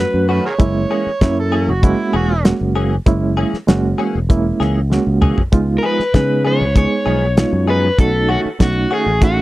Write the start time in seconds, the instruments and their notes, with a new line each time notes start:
Already playing: reed electric piano F#3 A3, overdriven electric guitar B4
0.00 reed electric piano C#4 F#4
0.14 fingered electric bass F#2
0.29 clean electric guitar D#3 A3 C#4 F#4, harmonica B4
0.46 harmonica G#4 A#4 C#5
0.59 fingered electric bass F#1, reed electric piano G#3 A#3 C#4 E4, kick, closed hi-hat
0.91 clean electric guitar E3 A#3 C#4 G#4
1.06 muted fingered electric bass stroke
1.21 fingered electric bass F#2, reed electric piano F#3 A#3 C#4 E4, kick, snare, closed hi-hat
1.40 harmonica A4
1.52 clean electric guitar E3 A#3 C#4 G#4
1.68 fingered electric bass F#1, harmonica F#4
1.83 reed electric piano G#3 A#3 C#4 F#4, harmonica E4, kick, closed hi-hat
2.13 fingered electric bass E1, clean electric guitar E3 A#3 C#4 G#4, harmonica F#4
2.44 reed electric piano G#3 A#3 C#4 F#4, snare, closed hi-hat
2.61 fingered electric bass F#1
2.76 clean electric guitar E3 A#3 C#4 G#4
3.06 fingered electric bass F#1, reed electric piano G#3 A#3 C#4 E4, kick, closed hi-hat
3.37 clean electric guitar E3 A#3 C#4 G#4
3.53 muted fingered electric bass stroke, snare
3.67 fingered electric bass F#1, reed electric piano G#3 A#3 C#4 F#4, snare, closed hi-hat
3.98 clean electric guitar E3 A#3 C#4 G#4
4.15 fingered electric bass E1
4.29 reed electric piano G#3 A#3 C#4 E4, kick, closed hi-hat
4.60 fingered electric bass C#2, clean electric guitar E3 A#3 C#4 G#4, snare
4.90 reed electric piano G#3 A#3 C#4 F#4, snare
5.07 fingered electric bass C#2
5.22 clean electric guitar E3 A#3 C#4 G#4, mid tom
5.38 floor tom
5.52 fingered electric bass C#2, reed electric piano G#3 B3 D#4 F4, kick, closed hi-hat
5.78 overdriven electric guitar A#4
5.83 clean electric guitar F3 B3 D#4 G#4, overdriven electric guitar B4
5.99 muted fingered electric bass stroke, snare
6.14 fingered electric bass C#3, reed electric piano G#3 B3 D#4 G#4, kick, snare, closed hi-hat
6.45 clean electric guitar F3 B3 D#4 G#4, overdriven electric guitar C#5
6.61 fingered electric bass C#2
6.75 reed electric piano G#3 B3 D#4 G#4, overdriven electric guitar C#5, kick, closed hi-hat
7.06 fingered electric bass B1, clean electric guitar F3 B3 D#4 G#4
7.37 reed electric piano G#3 B3 D#4 F4, snare, closed hi-hat
7.53 fingered electric bass F#2
7.67 clean electric guitar F3 B3 D#4 G#4, overdriven electric guitar B4
7.98 fingered electric bass B1, reed electric piano A3 C#4 D#4 F#4, overdriven electric guitar A4, kick, closed hi-hat
8.29 clean electric guitar D#3 A3 C#4 F#4, overdriven electric guitar F#4
8.45 muted fingered electric bass stroke
8.59 fingered electric bass B1, reed electric piano A3 C#4 D#4 F#4, overdriven electric guitar F#4, kick, snare, closed hi-hat
8.91 clean electric guitar D#3 A3 C#4 F#4, overdriven electric guitar G#4
9.06 fingered electric bass A1
9.22 reed electric piano A3 C#4 D#4 F#4, overdriven electric guitar F#4, kick, closed hi-hat